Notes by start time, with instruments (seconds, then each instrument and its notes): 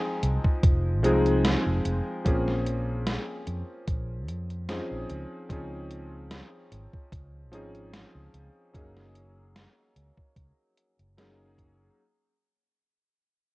Already playing: electric grand piano F3 G#3 C4 D#4 G#4
0.23 fretless electric bass C2, closed hi-hat
0.45 kick
0.63 fretless electric bass F1, kick, closed hi-hat
1.03 fretless electric bass C2, electric grand piano F3 G#3 C4 D#4 G#4, closed hi-hat
1.26 closed hi-hat
1.45 snare, closed hi-hat
1.66 fretless electric bass F1
1.85 fretless electric bass F1, closed hi-hat
2.24 fretless electric bass A#1, electric grand piano F3 A#3 C4 C#4 G#4, kick, closed hi-hat
2.48 snare
2.66 closed hi-hat
3.07 snare, closed hi-hat
3.47 fretless electric bass F2, closed hi-hat
3.88 fretless electric bass A#1, kick, closed hi-hat
4.28 fretless electric bass F2, closed hi-hat
4.50 closed hi-hat
4.69 electric grand piano F3 C4 C#4 D#4 G#4, snare, closed hi-hat
4.91 fretless electric bass A#1
5.09 fretless electric bass C#2, closed hi-hat
5.49 fretless electric bass C#2, electric grand piano F3 C4 C#4 D#4 G#4, kick, closed hi-hat
5.91 closed hi-hat
6.31 snare, closed hi-hat
6.72 fretless electric bass G#1, closed hi-hat
6.93 kick
7.12 fretless electric bass C#2, kick, closed hi-hat
7.51 fretless electric bass G#1, electric grand piano F3 C4 C#4 D#4 G#4, closed hi-hat
7.75 closed hi-hat
7.93 snare, closed hi-hat
8.15 fretless electric bass C#2
8.34 fretless electric bass C#2, closed hi-hat
8.73 fretless electric bass F#1, electric grand piano F#3 A#3 C#4 D#4 G#4, kick, closed hi-hat
8.97 snare
9.15 closed hi-hat
9.56 snare, closed hi-hat
9.96 fretless electric bass C#2, closed hi-hat
10.18 kick
10.37 fretless electric bass C#2, kick, closed hi-hat
10.77 closed hi-hat
10.99 fretless electric bass F#1, closed hi-hat
11.17 electric grand piano F#3 A#3 C#4 D#4 G#4, snare, closed hi-hat
11.58 kick, closed hi-hat